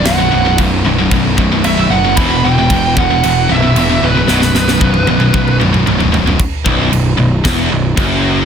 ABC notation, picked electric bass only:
X:1
M:4/4
L:1/8
Q:1/4=114
K:Edor
V:1 name="Picked electric bass" clef=bass
B,,,, B,,,, B,,,, B,,,, B,,,, B,,,, B,,,, F,,, | E,,, E,,, E,,, E,,, E,,, B,,,, E,,, C,,, | B,,,, B,,,, B,,,, B,,,, B,,,, B,,,, B,,,, B,,,, | z B,,,, B,,,, B,,,, E,,, B,,,, F,,,2 |]